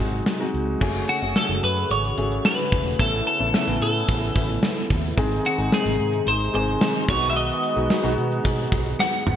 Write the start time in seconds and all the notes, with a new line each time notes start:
Already playing: C3 F#3 G#3 C4 D#4 F#4 G#4
0.00 G#1
0.26 snare, closed hi-hat
0.40 G#3 C4 D#4 F#4
0.54 C#2, closed hi-hat
0.80 F#1 C#3 A3 C#4 F#4 G#4, kick, crash
0.95 closed hi-hat
1.09 F#4, closed hi-hat
1.22 F#1 A3 C#4 F#4 G#4, closed hi-hat
1.36 A4, snare
1.49 F#1, closed hi-hat
1.63 F#2 B4, closed hi-hat
1.77 closed hi-hat
1.90 G#1 C#5, closed hi-hat
2.04 closed hi-hat
2.17 G#1 A3 C#4 F#4 G#4, closed hi-hat
2.32 closed hi-hat
2.45 B4, snare
2.59 closed hi-hat
2.72 E1, kick, open hi-hat
2.86 closed hi-hat
2.99 A1 B3 C#4 E4 A4, kick, closed hi-hat
3.13 closed hi-hat
3.27 A4, closed hi-hat
3.40 A1 B3 C#4 E4 A4, closed hi-hat
3.54 snare, tambourine
3.67 A1 B3 C#4 E4 A4, closed hi-hat
3.81 A2 A4, closed hi-hat
3.95 closed hi-hat
4.09 A1, kick, closed hi-hat
4.22 closed hi-hat
4.36 A1, kick, closed hi-hat
4.50 closed hi-hat
4.63 snare, tambourine
4.77 closed hi-hat
4.90 D#2, kick, open hi-hat
5.04 closed hi-hat
5.17 G#1 C3 D#3 G#3 C4 D#4 G#4, kick, closed hi-hat, shaker
5.31 closed hi-hat, shaker
5.45 F#4, closed hi-hat, shaker
5.58 G#1 G#3 C4 D#4 G#4, closed hi-hat, shaker
5.72 G#4, snare, tambourine, shaker
5.85 G#1, closed hi-hat, shaker
5.99 G#2, closed hi-hat, shaker
6.13 closed hi-hat, shaker
6.27 G#1 C5, closed hi-hat, shaker
6.40 closed hi-hat, shaker
6.54 G#1 G#3 C4 D#4 G#4 C5, closed hi-hat
6.68 closed hi-hat, shaker
6.81 snare, tambourine, shaker
6.95 closed hi-hat, shaker
7.08 B1 G#3 B3 D#4 F#4 C#5, kick, crash
7.22 closed hi-hat, shaker
7.30 E5
7.36 D#5, closed hi-hat, shaker
7.50 closed hi-hat, shaker
7.63 closed hi-hat, shaker
7.76 B1 G#3 B3 D#4 F#4, closed hi-hat, shaker
7.89 snare, tambourine, shaker
8.03 B1 G#3 B3 D#4 F#4, closed hi-hat, shaker
8.17 B2, closed hi-hat, shaker
8.31 closed hi-hat, shaker
8.44 B2, kick, closed hi-hat, shaker
8.58 closed hi-hat, shaker
8.72 B1, kick, closed hi-hat
8.86 closed hi-hat, shaker
8.99 F#5, snare, shaker
9.13 shaker
9.27 G#1, mid tom